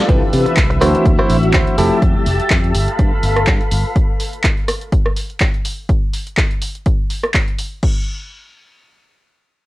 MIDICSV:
0, 0, Header, 1, 8, 480
1, 0, Start_track
1, 0, Tempo, 483871
1, 86, Time_signature, 4, 2, 24, 8
1, 9583, End_track
2, 0, Start_track
2, 0, Title_t, "String machine"
2, 0, Program_c, 0, 50
2, 88, Note_on_c, 0, 71, 77
2, 88, Note_on_c, 0, 76, 69
2, 794, Note_off_c, 0, 76, 0
2, 800, Note_off_c, 0, 71, 0
2, 806, Note_on_c, 0, 66, 77
2, 806, Note_on_c, 0, 76, 70
2, 1756, Note_off_c, 0, 66, 0
2, 1764, Note_on_c, 0, 67, 75
2, 1764, Note_on_c, 0, 81, 85
2, 2707, Note_off_c, 0, 76, 0
2, 2715, Note_off_c, 0, 67, 0
2, 2716, Note_off_c, 0, 81, 0
2, 2725, Note_on_c, 0, 69, 76
2, 2727, Note_on_c, 0, 77, 70
2, 2728, Note_on_c, 0, 83, 84
2, 3914, Note_off_c, 0, 69, 0
2, 3914, Note_off_c, 0, 77, 0
2, 3915, Note_off_c, 0, 83, 0
2, 9583, End_track
3, 0, Start_track
3, 0, Title_t, "Clean electric guitar"
3, 0, Program_c, 1, 27
3, 85, Note_on_c, 1, 60, 109
3, 89, Note_on_c, 1, 64, 97
3, 95, Note_on_c, 1, 71, 99
3, 218, Note_off_c, 1, 60, 0
3, 219, Note_off_c, 1, 64, 0
3, 220, Note_off_c, 1, 71, 0
3, 802, Note_on_c, 1, 66, 73
3, 804, Note_on_c, 1, 64, 72
3, 806, Note_on_c, 1, 72, 96
3, 1096, Note_off_c, 1, 64, 0
3, 1098, Note_off_c, 1, 66, 0
3, 1099, Note_off_c, 1, 72, 0
3, 1177, Note_on_c, 1, 64, 103
3, 1177, Note_on_c, 1, 66, 99
3, 1180, Note_on_c, 1, 72, 121
3, 1350, Note_off_c, 1, 64, 0
3, 1352, Note_off_c, 1, 66, 0
3, 1353, Note_off_c, 1, 72, 0
3, 1524, Note_on_c, 1, 66, 77
3, 1527, Note_on_c, 1, 64, 70
3, 1528, Note_on_c, 1, 72, 93
3, 1753, Note_off_c, 1, 64, 0
3, 1761, Note_off_c, 1, 66, 0
3, 1765, Note_on_c, 1, 67, 89
3, 1766, Note_off_c, 1, 72, 0
3, 1770, Note_on_c, 1, 64, 83
3, 1770, Note_on_c, 1, 69, 101
3, 1962, Note_off_c, 1, 64, 0
3, 1963, Note_off_c, 1, 67, 0
3, 1965, Note_off_c, 1, 69, 0
3, 9583, End_track
4, 0, Start_track
4, 0, Title_t, "Tine electric piano"
4, 0, Program_c, 2, 4
4, 76, Note_on_c, 2, 52, 79
4, 80, Note_on_c, 2, 71, 72
4, 82, Note_on_c, 2, 60, 72
4, 87, Note_on_c, 2, 62, 73
4, 91, Note_on_c, 2, 67, 85
4, 758, Note_off_c, 2, 52, 0
4, 760, Note_off_c, 2, 71, 0
4, 761, Note_off_c, 2, 60, 0
4, 763, Note_off_c, 2, 62, 0
4, 765, Note_off_c, 2, 67, 0
4, 800, Note_on_c, 2, 52, 78
4, 804, Note_on_c, 2, 57, 71
4, 807, Note_on_c, 2, 60, 72
4, 811, Note_on_c, 2, 62, 72
4, 815, Note_on_c, 2, 66, 89
4, 1720, Note_off_c, 2, 52, 0
4, 1722, Note_off_c, 2, 57, 0
4, 1723, Note_off_c, 2, 60, 0
4, 1725, Note_off_c, 2, 62, 0
4, 1727, Note_off_c, 2, 66, 0
4, 1763, Note_on_c, 2, 53, 80
4, 1765, Note_on_c, 2, 57, 71
4, 1767, Note_on_c, 2, 60, 74
4, 1769, Note_on_c, 2, 64, 74
4, 1771, Note_on_c, 2, 67, 91
4, 2245, Note_off_c, 2, 53, 0
4, 2245, Note_off_c, 2, 57, 0
4, 2247, Note_off_c, 2, 60, 0
4, 2248, Note_off_c, 2, 64, 0
4, 2248, Note_off_c, 2, 67, 0
4, 9583, End_track
5, 0, Start_track
5, 0, Title_t, "Fingered electric bass"
5, 0, Program_c, 3, 33
5, 86, Note_on_c, 3, 36, 94
5, 197, Note_off_c, 3, 36, 0
5, 331, Note_on_c, 3, 48, 93
5, 439, Note_off_c, 3, 48, 0
5, 567, Note_on_c, 3, 36, 89
5, 772, Note_off_c, 3, 36, 0
5, 810, Note_on_c, 3, 38, 91
5, 919, Note_off_c, 3, 38, 0
5, 1047, Note_on_c, 3, 38, 100
5, 1158, Note_off_c, 3, 38, 0
5, 1287, Note_on_c, 3, 33, 87
5, 1492, Note_off_c, 3, 33, 0
5, 1526, Note_on_c, 3, 38, 82
5, 1637, Note_off_c, 3, 38, 0
5, 1766, Note_on_c, 3, 29, 90
5, 1877, Note_off_c, 3, 29, 0
5, 2006, Note_on_c, 3, 41, 97
5, 2117, Note_off_c, 3, 41, 0
5, 2246, Note_on_c, 3, 29, 91
5, 2357, Note_off_c, 3, 29, 0
5, 2487, Note_on_c, 3, 41, 89
5, 2692, Note_off_c, 3, 41, 0
5, 2726, Note_on_c, 3, 31, 90
5, 2837, Note_off_c, 3, 31, 0
5, 2967, Note_on_c, 3, 43, 102
5, 3078, Note_off_c, 3, 43, 0
5, 3206, Note_on_c, 3, 31, 85
5, 3412, Note_off_c, 3, 31, 0
5, 3446, Note_on_c, 3, 43, 80
5, 3557, Note_off_c, 3, 43, 0
5, 3686, Note_on_c, 3, 31, 88
5, 3797, Note_off_c, 3, 31, 0
5, 9583, End_track
6, 0, Start_track
6, 0, Title_t, "Muted clean electric guitar strokes"
6, 325, Note_on_c, 9, 29, 36
6, 424, Note_off_c, 9, 29, 0
6, 454, Note_on_c, 9, 29, 33
6, 554, Note_off_c, 9, 29, 0
6, 694, Note_on_c, 9, 29, 89
6, 794, Note_off_c, 9, 29, 0
6, 9583, End_track
7, 0, Start_track
7, 0, Title_t, "Muted fingered electric bass strokes"
7, 461, Note_on_c, 9, 29, 41
7, 561, Note_off_c, 9, 29, 0
7, 2380, Note_on_c, 9, 29, 42
7, 2479, Note_off_c, 9, 29, 0
7, 3098, Note_on_c, 9, 29, 42
7, 3197, Note_off_c, 9, 29, 0
7, 9583, End_track
8, 0, Start_track
8, 0, Title_t, "Drums"
8, 86, Note_on_c, 9, 36, 120
8, 87, Note_on_c, 9, 42, 82
8, 185, Note_off_c, 9, 36, 0
8, 186, Note_off_c, 9, 42, 0
8, 327, Note_on_c, 9, 46, 103
8, 426, Note_off_c, 9, 46, 0
8, 458, Note_on_c, 9, 42, 53
8, 557, Note_off_c, 9, 42, 0
8, 561, Note_on_c, 9, 39, 124
8, 565, Note_on_c, 9, 42, 84
8, 566, Note_on_c, 9, 36, 104
8, 661, Note_off_c, 9, 39, 0
8, 664, Note_off_c, 9, 42, 0
8, 665, Note_off_c, 9, 36, 0
8, 699, Note_on_c, 9, 42, 38
8, 799, Note_off_c, 9, 42, 0
8, 807, Note_on_c, 9, 37, 74
8, 807, Note_on_c, 9, 46, 102
8, 906, Note_off_c, 9, 37, 0
8, 906, Note_off_c, 9, 46, 0
8, 939, Note_on_c, 9, 42, 54
8, 1038, Note_off_c, 9, 42, 0
8, 1046, Note_on_c, 9, 36, 121
8, 1047, Note_on_c, 9, 42, 83
8, 1145, Note_off_c, 9, 36, 0
8, 1146, Note_off_c, 9, 42, 0
8, 1180, Note_on_c, 9, 37, 63
8, 1279, Note_off_c, 9, 37, 0
8, 1286, Note_on_c, 9, 46, 102
8, 1385, Note_off_c, 9, 46, 0
8, 1419, Note_on_c, 9, 42, 39
8, 1519, Note_off_c, 9, 42, 0
8, 1522, Note_on_c, 9, 39, 126
8, 1526, Note_on_c, 9, 36, 103
8, 1526, Note_on_c, 9, 42, 83
8, 1621, Note_off_c, 9, 39, 0
8, 1625, Note_off_c, 9, 36, 0
8, 1625, Note_off_c, 9, 42, 0
8, 1659, Note_on_c, 9, 42, 37
8, 1758, Note_off_c, 9, 42, 0
8, 1766, Note_on_c, 9, 46, 98
8, 1865, Note_off_c, 9, 46, 0
8, 2006, Note_on_c, 9, 36, 125
8, 2006, Note_on_c, 9, 42, 79
8, 2105, Note_off_c, 9, 36, 0
8, 2106, Note_off_c, 9, 42, 0
8, 2245, Note_on_c, 9, 46, 108
8, 2344, Note_off_c, 9, 46, 0
8, 2378, Note_on_c, 9, 42, 52
8, 2478, Note_off_c, 9, 42, 0
8, 2482, Note_on_c, 9, 39, 121
8, 2486, Note_on_c, 9, 36, 103
8, 2486, Note_on_c, 9, 42, 80
8, 2581, Note_off_c, 9, 39, 0
8, 2585, Note_off_c, 9, 36, 0
8, 2585, Note_off_c, 9, 42, 0
8, 2618, Note_on_c, 9, 42, 36
8, 2718, Note_off_c, 9, 42, 0
8, 2724, Note_on_c, 9, 46, 105
8, 2823, Note_off_c, 9, 46, 0
8, 2857, Note_on_c, 9, 42, 53
8, 2956, Note_off_c, 9, 42, 0
8, 2965, Note_on_c, 9, 42, 81
8, 2966, Note_on_c, 9, 36, 121
8, 3064, Note_off_c, 9, 42, 0
8, 3065, Note_off_c, 9, 36, 0
8, 3204, Note_on_c, 9, 46, 106
8, 3304, Note_off_c, 9, 46, 0
8, 3337, Note_on_c, 9, 37, 79
8, 3337, Note_on_c, 9, 42, 37
8, 3437, Note_off_c, 9, 37, 0
8, 3437, Note_off_c, 9, 42, 0
8, 3441, Note_on_c, 9, 39, 123
8, 3445, Note_on_c, 9, 36, 108
8, 3445, Note_on_c, 9, 42, 79
8, 3540, Note_off_c, 9, 39, 0
8, 3544, Note_off_c, 9, 42, 0
8, 3545, Note_off_c, 9, 36, 0
8, 3577, Note_on_c, 9, 42, 36
8, 3676, Note_off_c, 9, 42, 0
8, 3683, Note_on_c, 9, 46, 105
8, 3783, Note_off_c, 9, 46, 0
8, 3925, Note_on_c, 9, 36, 125
8, 3925, Note_on_c, 9, 42, 77
8, 4024, Note_off_c, 9, 36, 0
8, 4024, Note_off_c, 9, 42, 0
8, 4165, Note_on_c, 9, 46, 109
8, 4264, Note_off_c, 9, 46, 0
8, 4297, Note_on_c, 9, 42, 48
8, 4396, Note_off_c, 9, 42, 0
8, 4401, Note_on_c, 9, 39, 119
8, 4404, Note_on_c, 9, 42, 75
8, 4405, Note_on_c, 9, 36, 104
8, 4500, Note_off_c, 9, 39, 0
8, 4504, Note_off_c, 9, 36, 0
8, 4504, Note_off_c, 9, 42, 0
8, 4536, Note_on_c, 9, 42, 35
8, 4636, Note_off_c, 9, 42, 0
8, 4644, Note_on_c, 9, 37, 76
8, 4644, Note_on_c, 9, 46, 107
8, 4743, Note_off_c, 9, 37, 0
8, 4743, Note_off_c, 9, 46, 0
8, 4775, Note_on_c, 9, 42, 48
8, 4874, Note_off_c, 9, 42, 0
8, 4884, Note_on_c, 9, 36, 121
8, 4884, Note_on_c, 9, 42, 74
8, 4983, Note_off_c, 9, 42, 0
8, 4984, Note_off_c, 9, 36, 0
8, 5017, Note_on_c, 9, 37, 65
8, 5116, Note_off_c, 9, 37, 0
8, 5124, Note_on_c, 9, 46, 106
8, 5223, Note_off_c, 9, 46, 0
8, 5257, Note_on_c, 9, 42, 35
8, 5356, Note_off_c, 9, 42, 0
8, 5361, Note_on_c, 9, 39, 118
8, 5364, Note_on_c, 9, 42, 75
8, 5365, Note_on_c, 9, 36, 106
8, 5460, Note_off_c, 9, 39, 0
8, 5463, Note_off_c, 9, 42, 0
8, 5464, Note_off_c, 9, 36, 0
8, 5498, Note_on_c, 9, 42, 34
8, 5597, Note_off_c, 9, 42, 0
8, 5605, Note_on_c, 9, 46, 103
8, 5705, Note_off_c, 9, 46, 0
8, 5845, Note_on_c, 9, 36, 118
8, 5846, Note_on_c, 9, 42, 72
8, 5945, Note_off_c, 9, 36, 0
8, 5945, Note_off_c, 9, 42, 0
8, 6087, Note_on_c, 9, 46, 105
8, 6186, Note_off_c, 9, 46, 0
8, 6219, Note_on_c, 9, 42, 47
8, 6318, Note_off_c, 9, 42, 0
8, 6323, Note_on_c, 9, 39, 113
8, 6326, Note_on_c, 9, 36, 102
8, 6326, Note_on_c, 9, 42, 73
8, 6422, Note_off_c, 9, 39, 0
8, 6425, Note_off_c, 9, 36, 0
8, 6425, Note_off_c, 9, 42, 0
8, 6458, Note_on_c, 9, 42, 33
8, 6557, Note_off_c, 9, 42, 0
8, 6564, Note_on_c, 9, 46, 99
8, 6664, Note_off_c, 9, 46, 0
8, 6697, Note_on_c, 9, 42, 47
8, 6797, Note_off_c, 9, 42, 0
8, 6805, Note_on_c, 9, 42, 71
8, 6806, Note_on_c, 9, 36, 117
8, 6904, Note_off_c, 9, 42, 0
8, 6905, Note_off_c, 9, 36, 0
8, 7045, Note_on_c, 9, 46, 103
8, 7144, Note_off_c, 9, 46, 0
8, 7178, Note_on_c, 9, 37, 80
8, 7178, Note_on_c, 9, 42, 34
8, 7277, Note_off_c, 9, 37, 0
8, 7277, Note_off_c, 9, 42, 0
8, 7282, Note_on_c, 9, 39, 113
8, 7286, Note_on_c, 9, 36, 102
8, 7286, Note_on_c, 9, 42, 69
8, 7382, Note_off_c, 9, 39, 0
8, 7385, Note_off_c, 9, 36, 0
8, 7385, Note_off_c, 9, 42, 0
8, 7418, Note_on_c, 9, 42, 33
8, 7518, Note_off_c, 9, 42, 0
8, 7524, Note_on_c, 9, 46, 99
8, 7624, Note_off_c, 9, 46, 0
8, 7765, Note_on_c, 9, 49, 82
8, 7766, Note_on_c, 9, 36, 107
8, 7864, Note_off_c, 9, 49, 0
8, 7865, Note_off_c, 9, 36, 0
8, 9583, End_track
0, 0, End_of_file